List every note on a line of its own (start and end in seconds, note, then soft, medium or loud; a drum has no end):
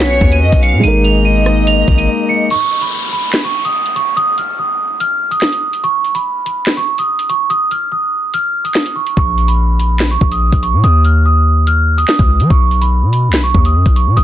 0.00 0.20 B1 loud
0.00 0.78 B3 medium
0.00 0.82 B3 medium
0.00 0.82 C#4 medium
0.00 0.80 F#4 medium
0.00 0.81 F#4 medium
0.00 0.83 C#5 medium
0.00 0.39 C#5 medium
0.00 snare loud
0.10 0.28 C#7 medium
0.21 0.43 D#2 loud
0.21 kick loud
0.32 0.61 D#7 medium
0.32 closed hi-hat medium
0.42 0.52 F#2 loud
0.42 0.62 D#5 medium
0.52 0.75 B1 loud
0.52 kick medium
0.52 closed hi-hat medium
0.63 0.83 F5 medium
0.63 0.80 C#7 medium
0.63 closed hi-hat medium
0.73 0.83 B2 loud
0.80 2.45 G#3 medium
0.80 1.01 D#7 loud
0.84 1.84 G#1 loud
0.84 2.49 G#3 medium
0.84 2.49 A#3 medium
0.84 2.47 D#4 medium
0.84 2.49 D#4 medium
0.84 closed hi-hat medium
0.88 2.49 A#4 medium
1.04 2.46 D#5 medium
1.04 1.22 F7 medium
1.04 closed hi-hat medium
1.25 1.64 D#7 medium
1.46 cross-stick loud
1.67 1.97 F7 medium
1.67 closed hi-hat medium
1.88 2.08 G#1 loud
1.88 kick loud
1.98 2.27 D#7 medium
1.98 closed hi-hat medium
2.29 2.47 C#7 medium
2.50 2.80 C#6 loud
2.50 closed hi-hat medium
2.50 downlifter medium
2.71 closed hi-hat medium
2.81 3.11 B5 medium
2.81 closed hi-hat medium
3.13 3.42 B5 medium
3.13 closed hi-hat medium
3.33 snare loud
3.33 clap loud
3.44 3.62 C#6 medium
3.65 3.94 D#6 medium
3.65 closed hi-hat medium
3.86 closed hi-hat medium
3.96 4.13 C#6 medium
3.96 closed hi-hat medium
4.17 4.34 D#6 loud
4.17 closed hi-hat medium
4.38 4.55 F6 medium
4.38 closed hi-hat medium
4.59 4.98 D#6 medium
5.00 5.30 F6 medium
5.00 closed hi-hat medium
5.31 5.40 D#6 medium
5.31 closed hi-hat medium
5.42 snare loud
5.42 clap loud
5.52 closed hi-hat medium
5.73 closed hi-hat medium
5.84 6.13 C#6 loud
5.84 closed hi-hat soft
6.05 closed hi-hat medium
6.15 6.44 B5 medium
6.15 closed hi-hat medium
6.46 6.75 B5 medium
6.46 closed hi-hat medium
6.67 snare loud
6.67 clap loud
6.77 6.95 C#6 medium
6.98 7.28 D#6 medium
6.98 closed hi-hat medium
7.19 closed hi-hat medium
7.29 7.47 C#6 medium
7.29 closed hi-hat medium
7.50 7.67 D#6 loud
7.50 closed hi-hat medium
7.71 7.88 F6 medium
7.71 closed hi-hat medium
7.92 8.31 D#6 medium
8.34 8.63 F6 medium
8.34 closed hi-hat medium
8.64 8.94 D#6 medium
8.64 closed hi-hat medium
8.75 snare loud
8.75 clap loud
8.86 closed hi-hat medium
8.96 9.13 C#6 medium
9.07 closed hi-hat medium
9.17 10.17 A#1 loud
9.17 9.47 C#6 loud
9.17 kick loud
9.17 closed hi-hat medium
9.38 closed hi-hat medium
9.48 9.78 B5 medium
9.48 closed hi-hat medium
9.79 10.09 B5 medium
9.79 closed hi-hat medium
10.00 snare loud
10.00 clap loud
10.11 10.28 C#6 medium
10.21 10.51 A#1 loud
10.21 kick loud
10.32 10.61 D#6 medium
10.32 closed hi-hat medium
10.52 10.75 A#1 loud
10.52 kick medium
10.52 closed hi-hat medium
10.63 10.80 C#6 medium
10.63 closed hi-hat medium
10.73 10.83 A#2 loud
10.84 12.05 D#2 loud
10.84 11.01 D#6 loud
10.84 closed hi-hat medium
11.05 11.22 F6 medium
11.05 closed hi-hat medium
11.26 11.65 D#6 medium
11.67 11.97 F6 medium
11.67 closed hi-hat medium
11.98 12.07 D#6 medium
11.98 closed hi-hat medium
12.08 12.48 D#6 medium
12.08 snare loud
12.08 clap medium
12.19 12.41 C#2 loud
12.19 kick medium
12.19 closed hi-hat medium
12.40 12.50 F#3 loud
12.40 closed hi-hat medium
12.50 13.04 B1 loud
12.50 12.80 C#6 loud
12.50 kick loud
12.50 closed hi-hat soft
12.71 closed hi-hat medium
12.81 13.11 B5 medium
12.81 closed hi-hat medium
13.02 13.30 B2 loud
13.12 13.42 B5 medium
13.12 closed hi-hat medium
13.28 13.53 B1 loud
13.33 snare loud
13.33 clap loud
13.44 13.61 C#6 medium
13.54 13.77 D#2 loud
13.54 kick loud
13.65 13.95 D#6 medium
13.65 closed hi-hat medium
13.75 13.85 F#2 loud
13.86 14.08 B1 loud
13.86 kick medium
13.86 closed hi-hat medium
13.96 14.13 C#6 medium
13.96 closed hi-hat medium
14.07 14.16 B2 loud
14.17 14.24 G#1 loud
14.17 14.24 D#6 loud
14.17 closed hi-hat medium